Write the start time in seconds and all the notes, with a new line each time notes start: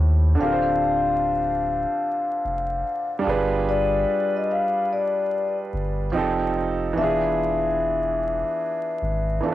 Already playing: D#2 A2 A3 C4 E4 G4
0.35 D3 D4
0.39 D1 C4 F4 F5
0.43 G4 A#4
0.52 C5
2.45 F1
3.19 G3 D4
3.24 G1 F4 G#4
3.30 B4
3.69 D5
4.37 D#5
4.51 F5
4.93 D5
5.73 G1
6.12 F1 F3 C4 D#4
6.16 G4 A4
6.93 E1 E3 B3
6.98 D4 F4 E5
7.04 G#4
9.02 G#1
9.40 E3 B3 D4 F4
9.46 A4